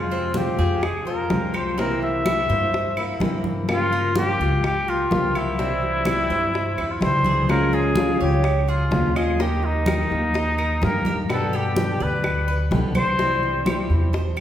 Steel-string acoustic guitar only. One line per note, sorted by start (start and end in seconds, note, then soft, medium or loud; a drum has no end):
0.00 0.34 C3 medium
0.00 0.34 F3 medium
0.00 0.34 G#3 medium
0.00 0.34 C4 medium
0.00 0.35 F4 medium
0.35 0.58 C3 medium
0.35 0.58 F3 medium
0.35 0.58 G#3 medium
0.35 0.58 C4 medium
0.35 0.58 F4 medium
0.59 0.82 G#3 soft
0.59 0.82 C4 soft
0.59 0.82 F4 soft
0.83 muted steel-string acoustic guitar stroke medium
1.06 1.30 G#3 soft
1.06 1.30 C4 soft
1.06 1.29 F4 soft
1.30 1.76 C3 medium
1.30 1.77 F3 medium
1.30 1.77 G#3 medium
1.30 1.77 C4 medium
1.30 1.78 F4 medium
1.77 2.24 C3 medium
1.77 2.24 E3 medium
1.77 2.25 A#3 medium
1.77 2.25 C4 medium
1.77 2.25 E4 medium
2.25 2.48 C3 medium
2.25 2.49 E3 medium
2.25 2.49 A#3 medium
2.25 2.48 C4 medium
2.25 2.47 E4 medium
2.49 2.72 A#3 soft
2.49 2.72 C4 soft
2.49 2.72 E4 medium
2.73 muted steel-string acoustic guitar stroke medium
2.97 3.21 A#3 soft
2.97 3.20 C4 soft
2.97 3.20 E4 soft
3.20 3.67 C3 medium
3.20 3.68 E3 medium
3.20 3.67 A#3 medium
3.20 3.68 C4 medium
3.20 3.68 E4 medium
3.68 4.14 C#3 medium
3.68 4.15 F3 medium
3.68 4.15 A#3 medium
3.68 4.15 F4 medium
3.68 4.16 G4 medium
4.15 4.39 C#3 medium
4.15 4.39 F3 medium
4.15 4.39 A#3 medium
4.15 4.39 F4 medium
4.15 4.39 G4 medium
4.40 4.62 A#3 soft
4.40 4.62 F4 soft
4.40 4.62 G4 soft
4.63 muted steel-string acoustic guitar stroke medium
4.87 5.09 A#3 soft
4.87 5.10 F4 soft
4.87 5.10 G4 soft
5.10 5.58 F3 medium
5.10 5.58 A#3 medium
5.10 5.58 F4 medium
5.10 5.58 G4 medium
5.58 6.05 C3 medium
5.58 6.05 E3 medium
5.58 6.06 G3 medium
5.58 6.06 C4 medium
5.58 6.06 E4 medium
6.06 6.29 C3 medium
6.06 6.29 E3 medium
6.06 6.30 G3 medium
6.06 6.30 C4 medium
6.06 6.29 E4 medium
6.30 6.53 G3 soft
6.30 6.53 C4 soft
6.30 6.53 E4 soft
6.54 muted steel-string acoustic guitar stroke medium
6.77 7.00 G3 soft
6.77 7.01 C4 soft
6.77 7.01 E4 soft
7.00 7.47 C3 medium
7.00 7.48 E3 medium
7.00 7.48 G3 medium
7.00 7.49 C4 medium
7.00 7.49 E4 medium
7.48 7.95 C#3 medium
7.48 7.95 F3 medium
7.48 7.95 G#3 medium
7.48 7.96 C#4 medium
7.48 7.96 F4 medium
7.96 8.20 C#3 medium
7.96 8.19 F3 medium
7.96 8.19 G#3 medium
7.96 8.19 C#4 medium
7.96 8.18 F4 medium
8.19 8.43 G#3 soft
8.19 8.43 C#4 soft
8.19 8.43 F4 soft
8.44 muted steel-string acoustic guitar stroke soft
8.91 9.14 C#3 medium
8.91 9.14 F3 medium
8.91 9.15 G#3 medium
8.91 9.15 C#4 medium
8.91 9.14 F4 medium
9.15 9.39 G#3 soft
9.15 9.39 C#4 soft
9.15 9.38 F4 soft
9.39 9.86 D#3 medium
9.39 9.86 A#3 medium
9.39 9.86 D#4 medium
9.39 9.87 G4 medium
9.87 10.10 D#3 medium
9.87 10.10 A#3 medium
9.87 10.10 D#4 medium
9.87 10.10 G4 medium
10.11 10.34 A#3 soft
10.11 10.34 D#4 soft
10.11 10.34 G4 soft
10.35 muted steel-string acoustic guitar stroke soft
10.81 11.04 D#3 medium
10.81 11.05 A#3 medium
10.81 11.04 D#4 medium
10.81 11.04 G4 medium
11.05 11.29 A#3 soft
11.05 11.28 D#4 soft
11.05 11.28 G4 medium
11.29 11.75 B2 medium
11.29 11.76 D3 medium
11.29 11.76 G3 medium
11.29 11.76 B3 medium
11.29 11.76 G4 medium
11.76 11.99 B2 medium
11.76 12.00 D3 medium
11.76 12.00 G3 medium
11.76 12.00 B3 medium
11.76 11.99 G4 medium
12.00 12.23 G3 soft
12.00 12.23 B3 soft
12.00 12.23 G4 soft
12.24 muted steel-string acoustic guitar stroke medium
12.72 12.94 B2 medium
12.72 12.94 D3 medium
12.72 12.95 G3 medium
12.72 12.95 B3 medium
12.72 12.94 G4 medium
12.95 13.19 G3 soft
12.95 13.19 B3 soft
12.95 13.18 G4 soft
13.20 13.66 C3 medium
13.20 13.66 E3 medium
13.20 13.66 G3 medium
13.20 13.66 C4 medium
13.20 13.67 E4 medium
13.67 13.89 C3 medium
13.67 13.90 E3 medium
13.67 13.90 G3 medium
13.67 13.90 C4 medium
13.67 13.89 E4 medium
13.91 14.14 G3 soft
13.91 14.13 C4 soft
13.91 14.13 E4 soft
14.15 muted steel-string acoustic guitar stroke soft